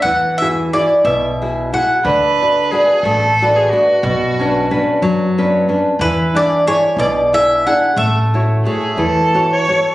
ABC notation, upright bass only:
X:1
M:6/8
L:1/8
Q:3/8=60
K:Emix
V:1 name="Upright bass" clef=bass
E,,3 B,,,3 | D,,3 A,,,3 | B,,,3 F,,3 | E,,3 B,,,3 |
A,,,3 E,,3 |]